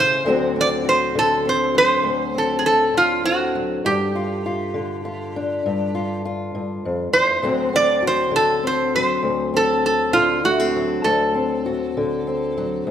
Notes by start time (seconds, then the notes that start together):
Already playing: C#3 E3 A3 C#4 G4
0.00 C5
0.25 D2 D3 F#3 C4 F#4
0.56 C4
0.61 D5
0.85 F#4
0.89 C5
1.15 D3 A4
1.45 C4 C5
1.75 F#3 C5
2.03 D2
2.35 C4 A4
2.59 G#4
2.66 A4
2.94 D3 F4
3.24 C4 F#4
3.55 F#3
3.85 G2 G4
4.15 F4
4.46 F4
4.74 D3
5.05 F4
5.36 D4
5.66 G2
5.95 F4
6.25 F4
6.55 G2
6.85 F2
7.13 E2 C5
7.42 D2 D3 F#3 C4 F#4
7.73 C4 D5
8.03 F#4
8.07 C5
8.31 D3
8.36 A4
8.63 C4
8.67 C5
8.95 F#3 C5
9.23 D2
9.54 C4 A4
9.86 A4
10.13 D3 F4
10.44 A3 F#4
10.60 C4
10.76 F#3
11.04 D2 A4
11.34 C4
11.66 F#4
11.97 D3
12.27 C4
12.57 F#3
12.87 D2